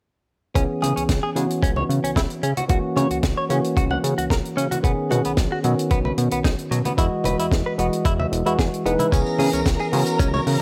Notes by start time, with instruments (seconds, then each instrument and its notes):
0.55 analog synth bass C#2, tine electric piano E3 B3 C#4 G#4, clean electric guitar C#4, kick, closed hi-hat
0.82 analog synth bass C#3, clean electric guitar G#4, closed hi-hat, high conga
0.96 analog synth bass C#2, clean electric guitar C#4, closed hi-hat
1.09 analog synth bass C#2, kick, snare, closed hi-hat
1.23 clean electric guitar G#4
1.35 analog synth bass C#3, tine electric piano E3 B3 C#4 F#4, clean electric guitar G#3, closed hi-hat
1.50 closed hi-hat
1.63 analog synth bass C#2, clean electric guitar C#4, kick, closed hi-hat
1.76 clean electric guitar C#5, high conga
1.89 analog synth bass C#3, closed hi-hat
2.04 analog synth bass C#2, clean electric guitar C#4, closed hi-hat
2.16 analog synth bass C#2, clean electric guitar E4, kick, snare, closed hi-hat
2.30 closed hi-hat
2.43 analog synth bass C#3, clean electric guitar C#4, closed hi-hat
2.57 clean electric guitar F#4, closed hi-hat, high conga
2.68 analog synth bass C#2, tine electric piano E3 A#3 C#4 F#4, clean electric guitar F#4, kick, closed hi-hat
2.96 analog synth bass C#3, clean electric guitar C#5, closed hi-hat, high conga
3.10 analog synth bass C#2, clean electric guitar F#4, closed hi-hat
3.23 analog synth bass C#2, kick, snare, closed hi-hat
3.37 clean electric guitar C#5
3.49 analog synth bass C#3, tine electric piano E3 A#3 C#4 F#4, clean electric guitar C#4, closed hi-hat
3.64 closed hi-hat
3.77 analog synth bass C#2, clean electric guitar F#4, kick, closed hi-hat
3.91 clean electric guitar F#5, high conga
4.04 analog synth bass C#3, closed hi-hat
4.18 analog synth bass C#2, clean electric guitar F#4, closed hi-hat
4.30 analog synth bass C#2, clean electric guitar A#4, kick, snare, closed hi-hat
4.45 closed hi-hat
4.57 analog synth bass C#3, clean electric guitar C#4, closed hi-hat
4.71 clean electric guitar F#4, closed hi-hat, high conga
4.83 analog synth bass B1, tine electric piano D#3 B3 C#4 G#4, clean electric guitar B3, kick, closed hi-hat
5.11 analog synth bass B2, clean electric guitar F#4, closed hi-hat, high conga
5.25 analog synth bass B1, clean electric guitar B3, closed hi-hat
5.37 analog synth bass B1, kick, snare, closed hi-hat
5.52 clean electric guitar F#4
5.63 analog synth bass B2, tine electric piano D#3 B3 C#4 F#4, clean electric guitar F#3, closed hi-hat
5.79 closed hi-hat
5.90 analog synth bass B1, clean electric guitar B3, kick, closed hi-hat
6.05 clean electric guitar B4, high conga
6.18 analog synth bass B2, closed hi-hat
6.31 analog synth bass B1, clean electric guitar B3, closed hi-hat
6.44 analog synth bass B1, clean electric guitar D#4, kick, snare, closed hi-hat
6.58 closed hi-hat
6.71 analog synth bass B2, clean electric guitar F#3, closed hi-hat
6.85 clean electric guitar B3, closed hi-hat, high conga
6.97 analog synth bass E2, tine electric piano E3 G#3 F#4 D#5, clean electric guitar E4, kick, closed hi-hat
7.24 analog synth bass E1, clean electric guitar B4, closed hi-hat, high conga
7.39 analog synth bass E2, clean electric guitar E4, closed hi-hat
7.51 analog synth bass E2, kick, snare, closed hi-hat
7.66 clean electric guitar B4
7.78 analog synth bass E1, tine electric piano E3 G#3 F#4 D#5, clean electric guitar B3, closed hi-hat
7.93 closed hi-hat
8.05 analog synth bass E2, clean electric guitar E4, kick, closed hi-hat
8.20 clean electric guitar E5, high conga
8.32 analog synth bass E1, closed hi-hat
8.46 analog synth bass E2, tine electric piano E3 G#3 F#4, clean electric guitar E4, closed hi-hat
8.59 analog synth bass E2, clean electric guitar G#4, kick, snare, closed hi-hat
8.74 closed hi-hat
8.85 analog synth bass E1, tine electric piano E3 G#3 D#4 B4, clean electric guitar B3, closed hi-hat
8.99 clean electric guitar E4, closed hi-hat, high conga
9.12 analog synth bass C#2, tine electric piano E3 B3 C#4 G#4, clean electric guitar C#4, string section A#4 A#5, kick, closed hi-hat, tambourine
9.26 tambourine
9.38 analog synth bass C#3, clean electric guitar G#4, open hi-hat, high conga
9.53 analog synth bass C#2, clean electric guitar C#4, closed hi-hat, tambourine
9.65 analog synth bass C#2, kick, snare, closed hi-hat, tambourine
9.80 clean electric guitar G#4, tambourine
9.91 analog synth bass C#3, tine electric piano E3 B3 C#4 F#4, clean electric guitar G#3, open hi-hat
10.06 closed hi-hat, tambourine
10.19 analog synth bass C#2, clean electric guitar C#4, kick, closed hi-hat, tambourine
10.34 clean electric guitar C#5, tambourine, high conga
10.47 analog synth bass C#3, open hi-hat